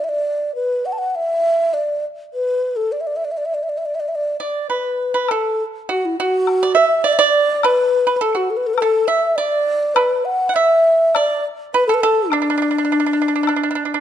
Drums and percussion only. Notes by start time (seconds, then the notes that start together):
5.28 high woodblock
6.47 high woodblock
7.63 high woodblock
8.78 high woodblock
9.96 high woodblock
11.15 high woodblock
12.32 high woodblock
13.47 high woodblock